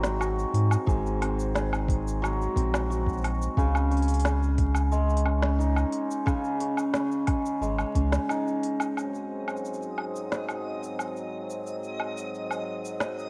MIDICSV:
0, 0, Header, 1, 6, 480
1, 0, Start_track
1, 0, Tempo, 674157
1, 620, Time_signature, 4, 2, 24, 8
1, 9467, End_track
2, 0, Start_track
2, 0, Title_t, "Synth texture"
2, 0, Program_c, 0, 99
2, 6384, Note_on_c, 0, 75, 76
2, 9467, Note_off_c, 0, 75, 0
2, 9467, End_track
3, 0, Start_track
3, 0, Title_t, "Hammered dulcimer"
3, 0, Program_c, 1, 15
3, 0, Note_on_c, 1, 44, 78
3, 0, Note_on_c, 1, 54, 72
3, 0, Note_on_c, 1, 56, 73
3, 0, Note_on_c, 1, 60, 58
3, 0, Note_on_c, 1, 63, 63
3, 0, Note_on_c, 1, 68, 69
3, 140, Note_on_c, 1, 66, 60
3, 607, Note_off_c, 1, 44, 0
3, 615, Note_on_c, 1, 44, 77
3, 618, Note_off_c, 1, 68, 0
3, 621, Note_on_c, 1, 68, 71
3, 860, Note_off_c, 1, 60, 0
3, 863, Note_on_c, 1, 60, 57
3, 1097, Note_off_c, 1, 68, 0
3, 1100, Note_on_c, 1, 68, 72
3, 1571, Note_off_c, 1, 54, 0
3, 1580, Note_on_c, 1, 54, 73
3, 1819, Note_off_c, 1, 60, 0
3, 1822, Note_on_c, 1, 60, 61
3, 2062, Note_off_c, 1, 66, 0
3, 2065, Note_on_c, 1, 66, 64
3, 2342, Note_off_c, 1, 63, 0
3, 2545, Note_on_c, 1, 49, 84
3, 2547, Note_off_c, 1, 68, 0
3, 2550, Note_on_c, 1, 68, 73
3, 2575, Note_off_c, 1, 44, 0
3, 2575, Note_off_c, 1, 54, 0
3, 2781, Note_on_c, 1, 61, 61
3, 2823, Note_off_c, 1, 60, 0
3, 3022, Note_off_c, 1, 68, 0
3, 3024, Note_on_c, 1, 68, 71
3, 3301, Note_off_c, 1, 56, 0
3, 3501, Note_on_c, 1, 56, 74
3, 3739, Note_off_c, 1, 61, 0
3, 3742, Note_on_c, 1, 61, 60
3, 3977, Note_on_c, 1, 63, 63
3, 4379, Note_off_c, 1, 66, 0
3, 4447, Note_off_c, 1, 49, 0
3, 4455, Note_on_c, 1, 49, 86
3, 4456, Note_off_c, 1, 68, 0
3, 4459, Note_on_c, 1, 68, 70
3, 4697, Note_off_c, 1, 61, 0
3, 4700, Note_on_c, 1, 61, 61
3, 4938, Note_off_c, 1, 68, 0
3, 4941, Note_on_c, 1, 68, 68
3, 5419, Note_off_c, 1, 56, 0
3, 5422, Note_on_c, 1, 56, 73
3, 5658, Note_off_c, 1, 61, 0
3, 5661, Note_on_c, 1, 61, 63
3, 5901, Note_off_c, 1, 63, 0
3, 5904, Note_on_c, 1, 63, 64
3, 6415, Note_off_c, 1, 49, 0
3, 8412, Note_off_c, 1, 61, 0
3, 8610, Note_off_c, 1, 68, 0
3, 9467, Note_off_c, 1, 56, 0
3, 9467, Note_off_c, 1, 63, 0
3, 9467, End_track
4, 0, Start_track
4, 0, Title_t, "Harmonium"
4, 0, Program_c, 2, 20
4, 6380, Note_on_c, 2, 54, 57
4, 6384, Note_on_c, 2, 44, 64
4, 6386, Note_on_c, 2, 60, 68
4, 9467, Note_off_c, 2, 44, 0
4, 9467, Note_off_c, 2, 54, 0
4, 9467, Note_off_c, 2, 60, 0
4, 9467, End_track
5, 0, Start_track
5, 0, Title_t, "Sub bass"
5, 0, Program_c, 3, 38
5, 0, Note_on_c, 3, 32, 89
5, 320, Note_off_c, 3, 32, 0
5, 381, Note_on_c, 3, 44, 83
5, 544, Note_off_c, 3, 44, 0
5, 623, Note_on_c, 3, 32, 92
5, 1760, Note_off_c, 3, 32, 0
5, 1822, Note_on_c, 3, 34, 73
5, 2480, Note_off_c, 3, 34, 0
5, 2545, Note_on_c, 3, 37, 96
5, 4161, Note_off_c, 3, 37, 0
5, 5418, Note_on_c, 3, 32, 86
5, 5583, Note_off_c, 3, 32, 0
5, 5662, Note_on_c, 3, 37, 91
5, 5825, Note_off_c, 3, 37, 0
5, 9467, End_track
6, 0, Start_track
6, 0, Title_t, "Drums"
6, 25, Note_on_c, 9, 38, 68
6, 32, Note_on_c, 9, 82, 57
6, 96, Note_off_c, 9, 38, 0
6, 103, Note_off_c, 9, 82, 0
6, 148, Note_on_c, 9, 77, 67
6, 155, Note_on_c, 9, 82, 50
6, 220, Note_off_c, 9, 77, 0
6, 227, Note_off_c, 9, 82, 0
6, 279, Note_on_c, 9, 82, 32
6, 350, Note_off_c, 9, 82, 0
6, 388, Note_on_c, 9, 46, 80
6, 460, Note_off_c, 9, 46, 0
6, 507, Note_on_c, 9, 77, 78
6, 514, Note_on_c, 9, 82, 70
6, 578, Note_off_c, 9, 77, 0
6, 585, Note_off_c, 9, 82, 0
6, 622, Note_on_c, 9, 36, 110
6, 635, Note_on_c, 9, 82, 53
6, 693, Note_off_c, 9, 36, 0
6, 706, Note_off_c, 9, 82, 0
6, 757, Note_on_c, 9, 82, 28
6, 828, Note_off_c, 9, 82, 0
6, 869, Note_on_c, 9, 46, 76
6, 869, Note_on_c, 9, 77, 72
6, 940, Note_off_c, 9, 46, 0
6, 940, Note_off_c, 9, 77, 0
6, 994, Note_on_c, 9, 82, 54
6, 1066, Note_off_c, 9, 82, 0
6, 1108, Note_on_c, 9, 38, 67
6, 1114, Note_on_c, 9, 82, 45
6, 1179, Note_off_c, 9, 38, 0
6, 1186, Note_off_c, 9, 82, 0
6, 1231, Note_on_c, 9, 77, 84
6, 1238, Note_on_c, 9, 82, 33
6, 1303, Note_off_c, 9, 77, 0
6, 1309, Note_off_c, 9, 82, 0
6, 1342, Note_on_c, 9, 36, 96
6, 1351, Note_on_c, 9, 46, 81
6, 1413, Note_off_c, 9, 36, 0
6, 1423, Note_off_c, 9, 46, 0
6, 1480, Note_on_c, 9, 82, 65
6, 1551, Note_off_c, 9, 82, 0
6, 1593, Note_on_c, 9, 77, 74
6, 1600, Note_on_c, 9, 82, 48
6, 1664, Note_off_c, 9, 77, 0
6, 1671, Note_off_c, 9, 82, 0
6, 1720, Note_on_c, 9, 82, 30
6, 1791, Note_off_c, 9, 82, 0
6, 1821, Note_on_c, 9, 36, 50
6, 1830, Note_on_c, 9, 46, 86
6, 1892, Note_off_c, 9, 36, 0
6, 1901, Note_off_c, 9, 46, 0
6, 1950, Note_on_c, 9, 38, 67
6, 1950, Note_on_c, 9, 77, 73
6, 1957, Note_on_c, 9, 82, 58
6, 2021, Note_off_c, 9, 38, 0
6, 2021, Note_off_c, 9, 77, 0
6, 2028, Note_off_c, 9, 82, 0
6, 2075, Note_on_c, 9, 82, 50
6, 2146, Note_off_c, 9, 82, 0
6, 2182, Note_on_c, 9, 36, 59
6, 2198, Note_on_c, 9, 82, 28
6, 2227, Note_off_c, 9, 82, 0
6, 2227, Note_on_c, 9, 82, 23
6, 2253, Note_off_c, 9, 36, 0
6, 2260, Note_off_c, 9, 82, 0
6, 2260, Note_on_c, 9, 82, 20
6, 2286, Note_off_c, 9, 82, 0
6, 2286, Note_on_c, 9, 82, 16
6, 2310, Note_on_c, 9, 46, 80
6, 2310, Note_on_c, 9, 77, 75
6, 2317, Note_off_c, 9, 82, 0
6, 2317, Note_on_c, 9, 82, 13
6, 2347, Note_off_c, 9, 82, 0
6, 2347, Note_on_c, 9, 82, 11
6, 2378, Note_off_c, 9, 82, 0
6, 2378, Note_on_c, 9, 82, 9
6, 2381, Note_off_c, 9, 46, 0
6, 2381, Note_off_c, 9, 77, 0
6, 2405, Note_off_c, 9, 82, 0
6, 2405, Note_on_c, 9, 82, 7
6, 2435, Note_off_c, 9, 82, 0
6, 2435, Note_on_c, 9, 82, 61
6, 2507, Note_off_c, 9, 82, 0
6, 2542, Note_on_c, 9, 36, 104
6, 2554, Note_on_c, 9, 82, 46
6, 2614, Note_off_c, 9, 36, 0
6, 2626, Note_off_c, 9, 82, 0
6, 2670, Note_on_c, 9, 77, 75
6, 2676, Note_on_c, 9, 82, 29
6, 2741, Note_off_c, 9, 77, 0
6, 2748, Note_off_c, 9, 82, 0
6, 2787, Note_on_c, 9, 46, 36
6, 2826, Note_off_c, 9, 46, 0
6, 2826, Note_on_c, 9, 46, 42
6, 2865, Note_off_c, 9, 46, 0
6, 2865, Note_on_c, 9, 46, 51
6, 2905, Note_off_c, 9, 46, 0
6, 2905, Note_on_c, 9, 46, 62
6, 2912, Note_on_c, 9, 82, 61
6, 2947, Note_off_c, 9, 46, 0
6, 2947, Note_on_c, 9, 46, 66
6, 2983, Note_off_c, 9, 82, 0
6, 2987, Note_off_c, 9, 46, 0
6, 2987, Note_on_c, 9, 46, 79
6, 3025, Note_on_c, 9, 38, 70
6, 3025, Note_on_c, 9, 77, 70
6, 3032, Note_on_c, 9, 82, 50
6, 3058, Note_off_c, 9, 46, 0
6, 3096, Note_off_c, 9, 38, 0
6, 3096, Note_off_c, 9, 77, 0
6, 3103, Note_off_c, 9, 82, 0
6, 3153, Note_on_c, 9, 82, 32
6, 3224, Note_off_c, 9, 82, 0
6, 3261, Note_on_c, 9, 46, 80
6, 3262, Note_on_c, 9, 36, 98
6, 3332, Note_off_c, 9, 46, 0
6, 3333, Note_off_c, 9, 36, 0
6, 3379, Note_on_c, 9, 77, 80
6, 3386, Note_on_c, 9, 82, 62
6, 3450, Note_off_c, 9, 77, 0
6, 3457, Note_off_c, 9, 82, 0
6, 3504, Note_on_c, 9, 82, 47
6, 3575, Note_off_c, 9, 82, 0
6, 3628, Note_on_c, 9, 82, 30
6, 3680, Note_on_c, 9, 46, 83
6, 3699, Note_off_c, 9, 82, 0
6, 3742, Note_on_c, 9, 77, 86
6, 3752, Note_off_c, 9, 46, 0
6, 3813, Note_off_c, 9, 77, 0
6, 3862, Note_on_c, 9, 38, 69
6, 3934, Note_off_c, 9, 38, 0
6, 3990, Note_on_c, 9, 82, 49
6, 4061, Note_off_c, 9, 82, 0
6, 4104, Note_on_c, 9, 77, 83
6, 4111, Note_on_c, 9, 82, 30
6, 4176, Note_off_c, 9, 77, 0
6, 4183, Note_off_c, 9, 82, 0
6, 4218, Note_on_c, 9, 46, 87
6, 4289, Note_off_c, 9, 46, 0
6, 4350, Note_on_c, 9, 82, 65
6, 4421, Note_off_c, 9, 82, 0
6, 4462, Note_on_c, 9, 36, 112
6, 4462, Note_on_c, 9, 77, 77
6, 4469, Note_on_c, 9, 82, 53
6, 4533, Note_off_c, 9, 36, 0
6, 4533, Note_off_c, 9, 77, 0
6, 4540, Note_off_c, 9, 82, 0
6, 4587, Note_on_c, 9, 82, 30
6, 4658, Note_off_c, 9, 82, 0
6, 4701, Note_on_c, 9, 46, 92
6, 4773, Note_off_c, 9, 46, 0
6, 4822, Note_on_c, 9, 77, 71
6, 4829, Note_on_c, 9, 82, 59
6, 4893, Note_off_c, 9, 77, 0
6, 4900, Note_off_c, 9, 82, 0
6, 4939, Note_on_c, 9, 38, 75
6, 4945, Note_on_c, 9, 82, 46
6, 5010, Note_off_c, 9, 38, 0
6, 5017, Note_off_c, 9, 82, 0
6, 5066, Note_on_c, 9, 82, 33
6, 5137, Note_off_c, 9, 82, 0
6, 5177, Note_on_c, 9, 46, 82
6, 5177, Note_on_c, 9, 77, 70
6, 5181, Note_on_c, 9, 36, 104
6, 5248, Note_off_c, 9, 46, 0
6, 5248, Note_off_c, 9, 77, 0
6, 5252, Note_off_c, 9, 36, 0
6, 5309, Note_on_c, 9, 82, 66
6, 5380, Note_off_c, 9, 82, 0
6, 5430, Note_on_c, 9, 82, 48
6, 5501, Note_off_c, 9, 82, 0
6, 5542, Note_on_c, 9, 77, 76
6, 5549, Note_on_c, 9, 82, 29
6, 5613, Note_off_c, 9, 77, 0
6, 5620, Note_off_c, 9, 82, 0
6, 5660, Note_on_c, 9, 36, 51
6, 5663, Note_on_c, 9, 46, 98
6, 5731, Note_off_c, 9, 36, 0
6, 5734, Note_off_c, 9, 46, 0
6, 5784, Note_on_c, 9, 38, 74
6, 5791, Note_on_c, 9, 82, 56
6, 5855, Note_off_c, 9, 38, 0
6, 5862, Note_off_c, 9, 82, 0
6, 5905, Note_on_c, 9, 77, 77
6, 5912, Note_on_c, 9, 82, 54
6, 5977, Note_off_c, 9, 77, 0
6, 5983, Note_off_c, 9, 82, 0
6, 6035, Note_on_c, 9, 82, 33
6, 6106, Note_off_c, 9, 82, 0
6, 6148, Note_on_c, 9, 46, 90
6, 6219, Note_off_c, 9, 46, 0
6, 6266, Note_on_c, 9, 77, 85
6, 6273, Note_on_c, 9, 82, 68
6, 6337, Note_off_c, 9, 77, 0
6, 6344, Note_off_c, 9, 82, 0
6, 6388, Note_on_c, 9, 77, 62
6, 6395, Note_on_c, 9, 82, 43
6, 6460, Note_off_c, 9, 77, 0
6, 6467, Note_off_c, 9, 82, 0
6, 6514, Note_on_c, 9, 82, 25
6, 6585, Note_off_c, 9, 82, 0
6, 6749, Note_on_c, 9, 77, 64
6, 6756, Note_on_c, 9, 82, 25
6, 6812, Note_off_c, 9, 82, 0
6, 6812, Note_on_c, 9, 82, 33
6, 6820, Note_off_c, 9, 77, 0
6, 6873, Note_off_c, 9, 82, 0
6, 6873, Note_on_c, 9, 82, 42
6, 6933, Note_off_c, 9, 82, 0
6, 6933, Note_on_c, 9, 82, 39
6, 6995, Note_off_c, 9, 82, 0
6, 6995, Note_on_c, 9, 82, 29
6, 7066, Note_off_c, 9, 82, 0
6, 7105, Note_on_c, 9, 77, 58
6, 7177, Note_off_c, 9, 77, 0
6, 7233, Note_on_c, 9, 82, 57
6, 7304, Note_off_c, 9, 82, 0
6, 7347, Note_on_c, 9, 38, 62
6, 7354, Note_on_c, 9, 82, 41
6, 7418, Note_off_c, 9, 38, 0
6, 7425, Note_off_c, 9, 82, 0
6, 7466, Note_on_c, 9, 77, 65
6, 7473, Note_on_c, 9, 82, 26
6, 7537, Note_off_c, 9, 77, 0
6, 7544, Note_off_c, 9, 82, 0
6, 7714, Note_on_c, 9, 82, 52
6, 7785, Note_off_c, 9, 82, 0
6, 7826, Note_on_c, 9, 77, 61
6, 7833, Note_on_c, 9, 82, 45
6, 7897, Note_off_c, 9, 77, 0
6, 7904, Note_off_c, 9, 82, 0
6, 7950, Note_on_c, 9, 82, 28
6, 8021, Note_off_c, 9, 82, 0
6, 8189, Note_on_c, 9, 82, 55
6, 8260, Note_off_c, 9, 82, 0
6, 8307, Note_on_c, 9, 82, 47
6, 8378, Note_off_c, 9, 82, 0
6, 8427, Note_on_c, 9, 82, 28
6, 8498, Note_off_c, 9, 82, 0
6, 8542, Note_on_c, 9, 77, 62
6, 8613, Note_off_c, 9, 77, 0
6, 8668, Note_on_c, 9, 82, 56
6, 8740, Note_off_c, 9, 82, 0
6, 8791, Note_on_c, 9, 82, 43
6, 8862, Note_off_c, 9, 82, 0
6, 8905, Note_on_c, 9, 77, 64
6, 8912, Note_on_c, 9, 82, 31
6, 8976, Note_off_c, 9, 77, 0
6, 8983, Note_off_c, 9, 82, 0
6, 9150, Note_on_c, 9, 82, 58
6, 9221, Note_off_c, 9, 82, 0
6, 9259, Note_on_c, 9, 38, 64
6, 9259, Note_on_c, 9, 77, 61
6, 9265, Note_on_c, 9, 82, 44
6, 9330, Note_off_c, 9, 38, 0
6, 9330, Note_off_c, 9, 77, 0
6, 9337, Note_off_c, 9, 82, 0
6, 9391, Note_on_c, 9, 82, 27
6, 9462, Note_off_c, 9, 82, 0
6, 9467, End_track
0, 0, End_of_file